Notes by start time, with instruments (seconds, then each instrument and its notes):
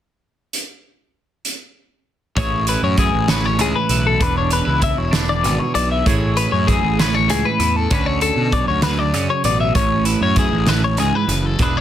0.53 closed hi-hat
1.45 closed hi-hat
2.36 picked electric bass A1, clean electric guitar A2 E3 C#4 E4 G#4 C#5, kick, closed hi-hat
2.67 clean electric guitar E4 B4, closed hi-hat
2.83 picked electric bass F#2, clean electric guitar C#5
2.97 clean electric guitar E3 G#4, kick, closed hi-hat
3.14 picked electric bass A1
3.28 clean electric guitar C#4 B4, snare, closed hi-hat
3.46 clean electric guitar C#5
3.59 picked electric bass C#2, clean electric guitar E3 G#4, closed hi-hat
3.76 clean electric guitar B4
3.89 picked electric bass B1, clean electric guitar E4, closed hi-hat
4.07 clean electric guitar A4
4.20 picked electric bass E1, clean electric guitar E2 D4 B4, kick, closed hi-hat
4.38 clean electric guitar C#5
4.51 clean electric guitar C#4 B4, closed hi-hat
4.65 picked electric bass C#2, clean electric guitar E4
4.80 clean electric guitar E3 E5, kick, closed hi-hat
4.98 picked electric bass E1, clean electric guitar C#5
5.11 clean electric guitar D4 B4, snare, closed hi-hat
5.29 clean electric guitar D5
5.43 picked electric bass G#1, clean electric guitar B2, closed hi-hat
5.60 clean electric guitar C#5
5.75 picked electric bass B1, clean electric guitar E4 D5, closed hi-hat
5.91 clean electric guitar E5
6.05 picked electric bass A1, clean electric guitar A2 E3 C#4 E4 G#4 C#5, kick, closed hi-hat
6.37 clean electric guitar C#4 B4, closed hi-hat
6.51 picked electric bass F#2, clean electric guitar E4 C#5
6.67 clean electric guitar E3 G#4, kick, closed hi-hat
6.83 picked electric bass A1
6.99 clean electric guitar C#4 B4, snare, closed hi-hat
7.15 clean electric guitar C#5
7.28 picked electric bass C#2, clean electric guitar E3 G#4, closed hi-hat
7.45 clean electric guitar B4
7.59 picked electric bass E2, clean electric guitar E4, closed hi-hat
7.76 clean electric guitar A4
7.91 picked electric bass D2, clean electric guitar D3 C#4 B4, kick, closed hi-hat
8.06 clean electric guitar C#5
8.21 clean electric guitar A4, closed hi-hat
8.36 picked electric bass B2
8.52 clean electric guitar F#3 D5, kick, closed hi-hat
8.68 picked electric bass D2, clean electric guitar C#5
8.82 clean electric guitar D3 B4, snare, closed hi-hat
8.99 clean electric guitar D5
9.14 picked electric bass F#2, clean electric guitar C#3, closed hi-hat
9.30 clean electric guitar C#5
9.44 picked electric bass A1, clean electric guitar B2 D5, closed hi-hat
9.60 clean electric guitar E5
9.74 picked electric bass A1, clean electric guitar A2 C#4 C#5, kick, closed hi-hat
10.05 clean electric guitar E4 B4, closed hi-hat
10.21 picked electric bass F#2, clean electric guitar C#5
10.36 clean electric guitar E3 G#4, kick, closed hi-hat
10.52 picked electric bass A1
10.66 clean electric guitar A2 B4, snare, closed hi-hat
10.84 clean electric guitar C#5
10.97 picked electric bass C#2, clean electric guitar G#2 G#4, closed hi-hat
11.15 clean electric guitar B4
11.27 picked electric bass F#1, clean electric guitar F#2, closed hi-hat
11.46 clean electric guitar A4
11.59 picked electric bass E1, clean electric guitar E2 E3 D4 E4 G#4 B4, kick, closed hi-hat
11.77 clean electric guitar C#5